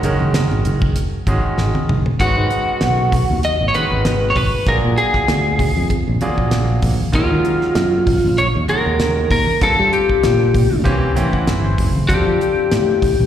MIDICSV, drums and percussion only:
0, 0, Header, 1, 2, 480
1, 0, Start_track
1, 0, Tempo, 618557
1, 1709, Time_signature, 4, 2, 24, 8
1, 10293, End_track
2, 0, Start_track
2, 0, Title_t, "Drums"
2, 26, Note_on_c, 9, 42, 64
2, 34, Note_on_c, 9, 64, 51
2, 103, Note_off_c, 9, 42, 0
2, 112, Note_off_c, 9, 64, 0
2, 157, Note_on_c, 9, 63, 64
2, 234, Note_off_c, 9, 63, 0
2, 266, Note_on_c, 9, 38, 112
2, 266, Note_on_c, 9, 42, 89
2, 343, Note_off_c, 9, 38, 0
2, 343, Note_off_c, 9, 42, 0
2, 398, Note_on_c, 9, 63, 60
2, 476, Note_off_c, 9, 63, 0
2, 505, Note_on_c, 9, 42, 63
2, 582, Note_off_c, 9, 42, 0
2, 634, Note_on_c, 9, 36, 85
2, 712, Note_off_c, 9, 36, 0
2, 742, Note_on_c, 9, 42, 74
2, 746, Note_on_c, 9, 64, 59
2, 820, Note_off_c, 9, 42, 0
2, 823, Note_off_c, 9, 64, 0
2, 984, Note_on_c, 9, 36, 65
2, 985, Note_on_c, 9, 42, 60
2, 988, Note_on_c, 9, 63, 67
2, 1062, Note_off_c, 9, 36, 0
2, 1062, Note_off_c, 9, 42, 0
2, 1065, Note_off_c, 9, 63, 0
2, 1224, Note_on_c, 9, 38, 60
2, 1301, Note_off_c, 9, 38, 0
2, 1355, Note_on_c, 9, 63, 70
2, 1358, Note_on_c, 9, 48, 62
2, 1432, Note_off_c, 9, 63, 0
2, 1435, Note_off_c, 9, 48, 0
2, 1469, Note_on_c, 9, 45, 88
2, 1469, Note_on_c, 9, 64, 66
2, 1546, Note_off_c, 9, 64, 0
2, 1547, Note_off_c, 9, 45, 0
2, 1598, Note_on_c, 9, 43, 76
2, 1675, Note_off_c, 9, 43, 0
2, 1705, Note_on_c, 9, 36, 85
2, 1707, Note_on_c, 9, 42, 75
2, 1783, Note_off_c, 9, 36, 0
2, 1785, Note_off_c, 9, 42, 0
2, 1944, Note_on_c, 9, 42, 50
2, 2021, Note_off_c, 9, 42, 0
2, 2179, Note_on_c, 9, 38, 107
2, 2179, Note_on_c, 9, 42, 70
2, 2257, Note_off_c, 9, 38, 0
2, 2257, Note_off_c, 9, 42, 0
2, 2424, Note_on_c, 9, 36, 75
2, 2426, Note_on_c, 9, 38, 32
2, 2426, Note_on_c, 9, 46, 60
2, 2427, Note_on_c, 9, 63, 62
2, 2427, Note_on_c, 9, 64, 72
2, 2501, Note_off_c, 9, 36, 0
2, 2504, Note_off_c, 9, 38, 0
2, 2504, Note_off_c, 9, 46, 0
2, 2505, Note_off_c, 9, 63, 0
2, 2505, Note_off_c, 9, 64, 0
2, 2560, Note_on_c, 9, 63, 66
2, 2637, Note_off_c, 9, 63, 0
2, 2663, Note_on_c, 9, 42, 68
2, 2741, Note_off_c, 9, 42, 0
2, 2905, Note_on_c, 9, 42, 55
2, 2911, Note_on_c, 9, 63, 70
2, 2983, Note_off_c, 9, 42, 0
2, 2989, Note_off_c, 9, 63, 0
2, 3143, Note_on_c, 9, 38, 112
2, 3143, Note_on_c, 9, 42, 77
2, 3148, Note_on_c, 9, 63, 57
2, 3221, Note_off_c, 9, 38, 0
2, 3221, Note_off_c, 9, 42, 0
2, 3226, Note_off_c, 9, 63, 0
2, 3380, Note_on_c, 9, 46, 74
2, 3381, Note_on_c, 9, 36, 80
2, 3385, Note_on_c, 9, 64, 66
2, 3458, Note_off_c, 9, 46, 0
2, 3459, Note_off_c, 9, 36, 0
2, 3463, Note_off_c, 9, 64, 0
2, 3620, Note_on_c, 9, 42, 79
2, 3621, Note_on_c, 9, 36, 88
2, 3698, Note_off_c, 9, 36, 0
2, 3698, Note_off_c, 9, 42, 0
2, 3861, Note_on_c, 9, 42, 51
2, 3939, Note_off_c, 9, 42, 0
2, 3989, Note_on_c, 9, 38, 27
2, 3990, Note_on_c, 9, 36, 67
2, 4067, Note_off_c, 9, 36, 0
2, 4067, Note_off_c, 9, 38, 0
2, 4100, Note_on_c, 9, 38, 105
2, 4100, Note_on_c, 9, 42, 78
2, 4178, Note_off_c, 9, 38, 0
2, 4178, Note_off_c, 9, 42, 0
2, 4339, Note_on_c, 9, 36, 86
2, 4340, Note_on_c, 9, 46, 70
2, 4345, Note_on_c, 9, 63, 64
2, 4345, Note_on_c, 9, 64, 69
2, 4417, Note_off_c, 9, 36, 0
2, 4417, Note_off_c, 9, 46, 0
2, 4422, Note_off_c, 9, 63, 0
2, 4422, Note_off_c, 9, 64, 0
2, 4471, Note_on_c, 9, 63, 62
2, 4548, Note_off_c, 9, 63, 0
2, 4579, Note_on_c, 9, 36, 70
2, 4582, Note_on_c, 9, 42, 71
2, 4656, Note_off_c, 9, 36, 0
2, 4659, Note_off_c, 9, 42, 0
2, 4817, Note_on_c, 9, 42, 53
2, 4818, Note_on_c, 9, 63, 69
2, 4895, Note_off_c, 9, 42, 0
2, 4895, Note_off_c, 9, 63, 0
2, 4949, Note_on_c, 9, 36, 62
2, 5027, Note_off_c, 9, 36, 0
2, 5055, Note_on_c, 9, 38, 98
2, 5055, Note_on_c, 9, 42, 81
2, 5057, Note_on_c, 9, 63, 71
2, 5132, Note_off_c, 9, 38, 0
2, 5132, Note_off_c, 9, 42, 0
2, 5135, Note_off_c, 9, 63, 0
2, 5294, Note_on_c, 9, 46, 69
2, 5297, Note_on_c, 9, 36, 88
2, 5299, Note_on_c, 9, 64, 66
2, 5372, Note_off_c, 9, 46, 0
2, 5374, Note_off_c, 9, 36, 0
2, 5377, Note_off_c, 9, 64, 0
2, 5434, Note_on_c, 9, 63, 64
2, 5512, Note_off_c, 9, 63, 0
2, 5535, Note_on_c, 9, 42, 72
2, 5538, Note_on_c, 9, 36, 91
2, 5613, Note_off_c, 9, 42, 0
2, 5616, Note_off_c, 9, 36, 0
2, 5780, Note_on_c, 9, 42, 47
2, 5857, Note_off_c, 9, 42, 0
2, 5908, Note_on_c, 9, 38, 30
2, 5986, Note_off_c, 9, 38, 0
2, 6017, Note_on_c, 9, 38, 102
2, 6017, Note_on_c, 9, 42, 72
2, 6094, Note_off_c, 9, 38, 0
2, 6094, Note_off_c, 9, 42, 0
2, 6261, Note_on_c, 9, 36, 80
2, 6262, Note_on_c, 9, 46, 70
2, 6263, Note_on_c, 9, 63, 58
2, 6263, Note_on_c, 9, 64, 67
2, 6338, Note_off_c, 9, 36, 0
2, 6340, Note_off_c, 9, 46, 0
2, 6341, Note_off_c, 9, 63, 0
2, 6341, Note_off_c, 9, 64, 0
2, 6392, Note_on_c, 9, 63, 68
2, 6470, Note_off_c, 9, 63, 0
2, 6502, Note_on_c, 9, 42, 61
2, 6580, Note_off_c, 9, 42, 0
2, 6738, Note_on_c, 9, 63, 66
2, 6741, Note_on_c, 9, 42, 54
2, 6815, Note_off_c, 9, 63, 0
2, 6819, Note_off_c, 9, 42, 0
2, 6981, Note_on_c, 9, 38, 95
2, 6981, Note_on_c, 9, 42, 74
2, 6983, Note_on_c, 9, 63, 69
2, 7059, Note_off_c, 9, 38, 0
2, 7059, Note_off_c, 9, 42, 0
2, 7061, Note_off_c, 9, 63, 0
2, 7221, Note_on_c, 9, 36, 84
2, 7221, Note_on_c, 9, 46, 73
2, 7225, Note_on_c, 9, 64, 61
2, 7299, Note_off_c, 9, 36, 0
2, 7299, Note_off_c, 9, 46, 0
2, 7303, Note_off_c, 9, 64, 0
2, 7350, Note_on_c, 9, 63, 64
2, 7427, Note_off_c, 9, 63, 0
2, 7461, Note_on_c, 9, 42, 77
2, 7462, Note_on_c, 9, 36, 91
2, 7538, Note_off_c, 9, 42, 0
2, 7539, Note_off_c, 9, 36, 0
2, 7704, Note_on_c, 9, 42, 53
2, 7782, Note_off_c, 9, 42, 0
2, 7833, Note_on_c, 9, 36, 64
2, 7911, Note_off_c, 9, 36, 0
2, 7942, Note_on_c, 9, 38, 107
2, 7942, Note_on_c, 9, 42, 77
2, 8020, Note_off_c, 9, 38, 0
2, 8020, Note_off_c, 9, 42, 0
2, 8183, Note_on_c, 9, 36, 78
2, 8184, Note_on_c, 9, 46, 61
2, 8187, Note_on_c, 9, 64, 67
2, 8261, Note_off_c, 9, 36, 0
2, 8261, Note_off_c, 9, 46, 0
2, 8265, Note_off_c, 9, 64, 0
2, 8316, Note_on_c, 9, 63, 69
2, 8394, Note_off_c, 9, 63, 0
2, 8423, Note_on_c, 9, 36, 69
2, 8424, Note_on_c, 9, 42, 68
2, 8501, Note_off_c, 9, 36, 0
2, 8501, Note_off_c, 9, 42, 0
2, 8664, Note_on_c, 9, 63, 61
2, 8665, Note_on_c, 9, 42, 59
2, 8741, Note_off_c, 9, 63, 0
2, 8742, Note_off_c, 9, 42, 0
2, 8793, Note_on_c, 9, 36, 63
2, 8802, Note_on_c, 9, 64, 56
2, 8871, Note_off_c, 9, 36, 0
2, 8880, Note_off_c, 9, 64, 0
2, 8904, Note_on_c, 9, 38, 105
2, 8904, Note_on_c, 9, 42, 79
2, 8914, Note_on_c, 9, 63, 56
2, 8982, Note_off_c, 9, 38, 0
2, 8982, Note_off_c, 9, 42, 0
2, 8991, Note_off_c, 9, 63, 0
2, 9144, Note_on_c, 9, 36, 80
2, 9144, Note_on_c, 9, 46, 67
2, 9153, Note_on_c, 9, 64, 68
2, 9221, Note_off_c, 9, 36, 0
2, 9221, Note_off_c, 9, 46, 0
2, 9231, Note_off_c, 9, 64, 0
2, 9282, Note_on_c, 9, 63, 64
2, 9359, Note_off_c, 9, 63, 0
2, 9384, Note_on_c, 9, 36, 91
2, 9388, Note_on_c, 9, 42, 71
2, 9462, Note_off_c, 9, 36, 0
2, 9465, Note_off_c, 9, 42, 0
2, 9632, Note_on_c, 9, 42, 43
2, 9709, Note_off_c, 9, 42, 0
2, 9867, Note_on_c, 9, 38, 95
2, 9867, Note_on_c, 9, 42, 73
2, 9945, Note_off_c, 9, 38, 0
2, 9945, Note_off_c, 9, 42, 0
2, 10106, Note_on_c, 9, 36, 79
2, 10107, Note_on_c, 9, 46, 67
2, 10110, Note_on_c, 9, 63, 57
2, 10110, Note_on_c, 9, 64, 61
2, 10183, Note_off_c, 9, 36, 0
2, 10185, Note_off_c, 9, 46, 0
2, 10188, Note_off_c, 9, 63, 0
2, 10188, Note_off_c, 9, 64, 0
2, 10241, Note_on_c, 9, 63, 71
2, 10293, Note_off_c, 9, 63, 0
2, 10293, End_track
0, 0, End_of_file